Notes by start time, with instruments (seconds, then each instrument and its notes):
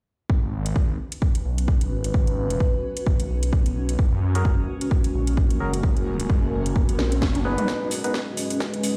0.30 detuned saw bass G#1, ambient pad C#4, kick
0.43 detuned saw bass G#1
0.50 ambient pad F#4
0.66 closed hi-hat
0.70 ambient pad B4
0.76 detuned saw bass G#1, kick
1.12 closed hi-hat
1.22 kick
1.35 closed hi-hat
1.45 detuned saw bass B1
1.58 closed hi-hat
1.68 kick
1.81 closed hi-hat
1.91 detuned saw bass G#1
2.04 closed hi-hat
2.14 detuned saw bass G#1, kick
2.27 closed hi-hat
2.50 closed hi-hat
2.60 kick
2.97 closed hi-hat
3.06 detuned saw bass G#1, kick
3.20 closed hi-hat
3.30 detuned saw bass B1
3.43 closed hi-hat
3.53 kick
3.66 closed hi-hat
3.76 detuned saw bass B1
3.89 closed hi-hat
3.99 analog synth pad G#3 A#3 F#4, kick, riser
4.12 detuned saw bass F#2
4.35 synth stab C#4 F#4 G#4 A#4, closed hi-hat
4.45 detuned saw bass F#1, ambient pad A#4, kick
4.81 closed hi-hat
4.91 kick
5.04 closed hi-hat
5.14 detuned saw bass A#1
5.27 closed hi-hat
5.37 kick
5.50 closed hi-hat
5.60 detuned saw bass F#1, synth stab C#4 F#4 G#4 A#4
5.74 closed hi-hat
5.83 detuned saw bass F#1, kick
5.97 closed hi-hat
6.20 closed hi-hat
6.30 detuned saw bass F#1, kick
6.53 detuned saw bass F#1
6.66 closed hi-hat
6.76 kick
6.89 closed hi-hat
6.99 detuned saw bass A#1, snare
7.12 closed hi-hat
7.22 kick, snare
7.35 closed hi-hat, mid tom
7.45 detuned saw bass F#1, synth stab B3 D#4 G#4 B4
7.58 closed hi-hat, mid tom
7.68 ambient pad G#3, analog synth pad G#3 G#4 B4 D#5, kick, snare, riser, cabasa
7.91 open hi-hat, cabasa
7.97 ambient pad B4
8.04 synth stab B3 D#4 G#4 B4, closed hi-hat, cabasa
8.14 kick, snare, cabasa
8.37 open hi-hat, cabasa
8.50 closed hi-hat, cabasa
8.60 kick, snare, cabasa
8.74 closed hi-hat
8.83 open hi-hat, cabasa